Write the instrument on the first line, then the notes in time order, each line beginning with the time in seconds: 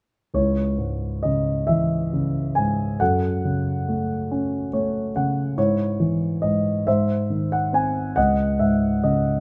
grand piano
0.34 C#2 E4 C#5
0.78 G#2
1.23 C#3 D#5
1.67 E3 E5
2.13 C#3
2.55 G#2 G#5
3.00 F#2 A4 F#5
3.45 C#3
3.88 A3
4.31 C#4
4.73 A3 C#5
5.16 C#3 F#5
5.57 G#2 E4 C#5
6.00 E3
6.42 G#2 D#5
6.87 G#2 C5 E5
7.30 D#3
7.52 F#5
7.73 C4 G#5
8.16 C#2 D#5 F#5
8.59 G#2 E5
9.04 C#3 D#5